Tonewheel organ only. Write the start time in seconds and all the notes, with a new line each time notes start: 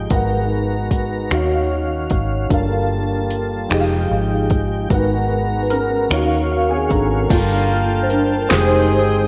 0.12 G#3 B3 F#4 A#5
1.31 D#3 C#4 F5
2.50 G3 A#3 F4 A5
3.69 F3 G#3 D#4 G5
4.90 G#3 B3 F#4 A#5
6.09 D#3 F#4 C#5 F5
7.29 F5 G5 A5
8.49 G#3 G5 D#6